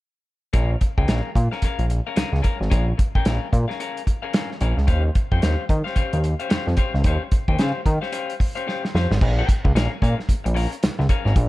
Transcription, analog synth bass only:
0.54 A#1
0.98 C#2
1.08 A#1
1.35 A#2
1.62 A#1
1.79 A#1
2.17 C#2
2.32 C#2
2.60 G#1
2.71 A#1
3.16 A#1
3.26 A#1
3.53 A#2
4.61 A#1
4.77 C#2
4.88 D#2
5.32 F2
5.43 D#2
5.70 D#3
5.96 D#2
6.13 D#2
6.51 F2
6.67 F2
6.94 C#2
7.05 D#2
7.48 D#2
7.59 C#3
7.86 D#3
8.95 F2
9.11 G#1
9.22 A#1
9.64 C#2
9.75 A#1
10.02 A#2
10.29 A#1
10.46 A#1
10.83 C#2
10.99 C#2
11.25 G#1
11.36 A#1

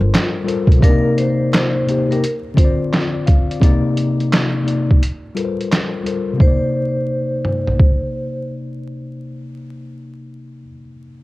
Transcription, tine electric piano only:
Already playing: G3 F4 A4 A#4 C5
0.44 G3 F4 A4 A#4 C5
0.81 C3 A#3 D4 D5
0.90 D#4
1.86 C3 A#3 D#4 G4
2.09 C3 A#3 D#4 G4
2.54 D3 C4 F4 C5
2.64 D5
3.14 D5
3.26 F5
3.51 D5
3.60 C3 A#3 D#4 D5
4.63 C3 A#3 D#4 D5
5.35 G3 F4 A4 A#4 B4
5.44 C5
6.04 G3 F4 A4 A#4 C5
6.33 C3
6.38 A#3
6.43 D#4
6.47 D5

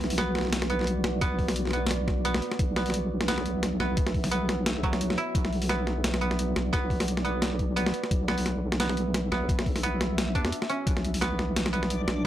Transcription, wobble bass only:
Already playing: B1
1.04 B1
1.22 B1
2.59 B1
3.80 B1
3.97 B1
5.35 B1
6.56 B1
6.73 B1
8.11 B1
9.31 B1
9.49 B1
10.35 E2
10.87 B1
12.07 B1

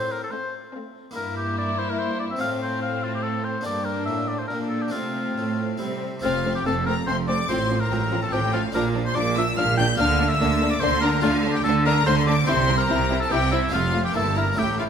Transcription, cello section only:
Already playing: A2
1.16 G2
2.41 A2
3.66 G2
4.08 A2
4.51 A#2
4.94 C3
5.38 A2
5.81 C3
6.23 F2
6.65 F2
7.07 F2
7.49 A2
7.90 A2
8.32 A2
8.74 A#2
9.16 A#2
9.57 A#2
9.98 D3
10.40 D3
10.82 D3
11.24 D3
11.65 D3
12.07 D3
12.48 C3
12.89 C3
13.31 C3
13.73 F2
14.15 G2
14.57 A2

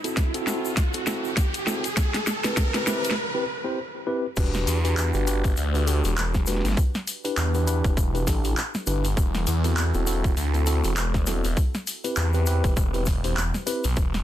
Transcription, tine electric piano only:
0.04 C4 E4 F#4 A4
0.34 C4 E4 F#4 A4
0.47 C4 E4 F#4 A4
0.94 C4 E4 F#4 A4
1.07 C4 E4 F#4 A4
1.67 C4 E4 F#4 A4
2.44 C4 E4 G4 B4
2.74 C4 E4 G4 B4
2.87 C4 E4 G4 B4
3.34 C4 E4 G4 B4
3.64 C4 E4 G4 C5
4.07 C4 E4 G4 B4
4.37 D4 F#4 G4 B4
4.84 D4 F#4 G4 B4
5.14 D4 F#4 G4 B4
5.27 D4 F#4 G4 B4
5.74 D4 F#4 G4 B4
5.87 D4 F#4 G4 A4
6.47 D4 F#4 G4 B4
7.24 D4 E4 G4 B4
7.54 D4 E4 G4 B4
7.67 D4 E4 G4 B4
8.14 D4 E4 G4 B4
8.27 D4 E4 G4 A4
8.87 D4 E4 G4 B4
9.64 C4 E4 F#4 A4
9.94 C4 E4 F#4 A4
10.07 C4 E4 F#4 A4
10.54 C4 E4 F#4 A4
10.67 C4 E4 F#4 A4
11.27 C4 E4 F#4 A4
12.04 C4 E4 G4 B4
12.34 C4 E4 G4 B4
12.47 C4 E4 G4 B4
12.94 C4 E4 G4 B4
13.24 C4 E4 G4 C5
13.67 C4 E4 G4 B4

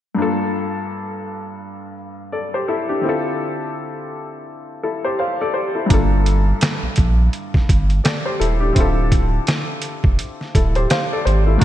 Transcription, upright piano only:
0.15 G2 A#3 D4
0.20 F4 A4
2.32 A4 D5
2.54 G4 C5
2.68 E4 A4
2.89 D4 G4
3.01 D3 C4 E4
3.07 F4 A4
4.83 E4 A4
5.04 G4 C5
5.19 C5 F5
5.41 A4 D5
5.54 G4 C5
5.75 E4 A4
5.86 G2 A#3 D4
5.92 F4 A4
8.04 A4 D5
8.25 G4 C5
8.40 E4 A4
8.60 D4 G4
8.73 D3 C4 E4
8.78 F4 A4
10.55 E4 A4
10.76 G4 C5
10.90 C5 F5
11.12 A4 D5
11.25 G4 C5
11.47 E4 A4
11.58 G2 A#3

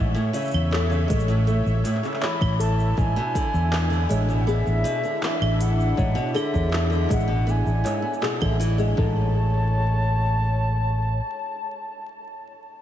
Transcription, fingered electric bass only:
Already playing: A1
0.54 E2
1.10 A1
1.66 A1
2.42 A1
2.98 A1
3.54 E2
4.11 A1
4.67 A1
5.41 A1
5.98 A1
6.54 E2
7.11 A1
7.66 A1
8.42 A1
8.98 A1

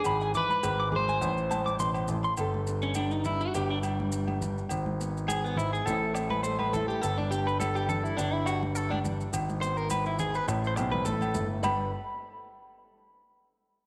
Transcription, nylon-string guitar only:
0.05 G#2
0.35 E4
0.63 G#4
0.92 G#3 G#4
1.20 A2
1.51 C4
1.80 B2
2.10 A2
2.38 G2 G3 D4 A4
2.68 D4
2.97 G3
3.27 D4
3.55 D4
3.83 G3
4.41 G2
4.69 G#2
5.00 B3
5.57 G#2
5.87 A2 A3 C4 E4
6.18 C4
6.46 A3
6.76 E4
7.32 D4
7.60 G3
7.89 D4
8.18 D4
8.46 G3
9.04 G2
9.33 G#2
9.64 B3
10.19 G#2
10.48 A2
10.78 C4
11.06 A3
11.35 E4
11.63 G2 G3 B3 D4 B4

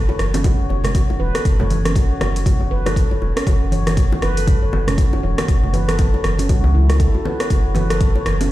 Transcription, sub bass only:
0.19 F#1
0.70 F#1
1.20 E1
1.45 F#1
2.21 F#1
2.71 F#1
3.22 E1
3.47 F#1
4.22 F#1
4.73 F#1
5.23 E1
5.48 F#1
6.24 F#1
6.49 C#2
7.50 F#1
8.26 F#1

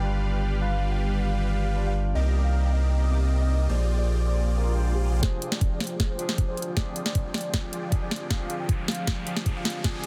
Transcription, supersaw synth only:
Already playing: G3 G4 B4 D5 F5
2.15 C4 G4 A#4 D5 D#5
3.69 A#3 F4 G4 G#4 C5 D5
5.23 F3 F4 G#4 D5 G5
5.42 F3 F4 G#4 D5 G5
5.52 F3 F4 G#4 D5 G5
5.61 F3 F4 G#4 D5 G5
5.80 F3 F4 G#4 D5 G5
6.00 F3 F4 G#4 D5 G5
6.19 F3 F4 G#4 D5 G5
6.29 F3 F4 G#4 D5 G5
6.48 F3 F4 G#4 D5 G5
6.67 F3 F4 G#4 D5 G5
6.77 F3 F4 G#4 D5 G5
6.96 F3 F4 G#4 D5 G5
7.06 F3 F4 G#4 D5 G5
7.15 F3 F4 G#4 D5 G5
7.34 F3 F4 G#4 D5 G5
7.54 F3 F4 G#4 D5 G5
7.73 F3 F4 G#4 D5 G5
7.83 F3 F4 G#4 D5 G5
8.02 F3 F4 G#4 D5 G5
8.21 F3 F4 G#4 D5 G5
8.30 F3 F4 G#4 D5 G5
8.50 F3 F4 G#4 D5 G5
8.60 F3 F4 G#4 D5 G5
8.69 F3 F4 G#4 D5 G5
8.88 F3 F4 G#4 D5 G5
9.07 F3 F4 G#4 D5 G5
9.27 F3 F4 G#4 D5 G5
9.36 F3 F4 G#4 D5 G5
9.56 F3 F4 G#4 D5 G5
9.75 F3 F4 G#4 D5 G5
9.84 F3 F4 G#4 D5 G5

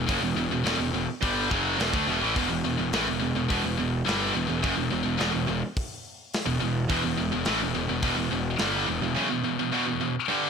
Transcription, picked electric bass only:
0.09 F#1
0.21 E1
0.35 E1
0.49 E1
0.65 E1
0.78 E1
0.93 E1
1.22 G1
1.51 F#1
1.79 E1
1.94 D2
2.07 E1
2.22 A1
2.36 E1
2.51 E1
2.64 E1
2.79 E1
2.92 A1
3.07 E1
3.20 E1
3.35 E1
3.51 E1
3.64 E1
3.79 E1
4.07 G1
4.35 E1
4.49 E1
4.64 F#1
4.77 E1
4.92 E1
5.06 E1
5.20 E1
5.34 E1
5.49 E1
6.47 E1
6.62 E1
6.90 E1
7.06 E1
7.20 E1
7.34 E1
7.48 A1
7.62 E1
7.77 E1
7.90 E1
8.03 E1
8.17 E1
8.32 E1
8.59 G1
8.88 E1
9.02 E1

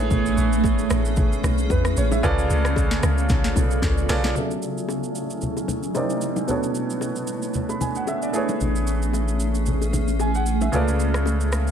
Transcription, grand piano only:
Already playing: A3 E4 G#4 B4 C#5
1.71 B4
1.98 C#5
2.12 E5
2.23 C#3 C#4 F4 A4 B4 D5
4.09 C#3 C#4 F4 A4 B4 D5
4.34 F#3 C#4 G#4 A4 E5
5.95 C3 C4 D#4 A#4 D5
6.47 B2 B3 D4 A4 C#5
7.70 B5
7.81 G#5
7.96 F#5
8.08 E5
8.23 D5
8.33 A3 E4 G#4 B4 C#5
10.21 G#5
10.35 F#5
10.62 E5
10.72 C#3 C#4 F4 A4 B4 D5

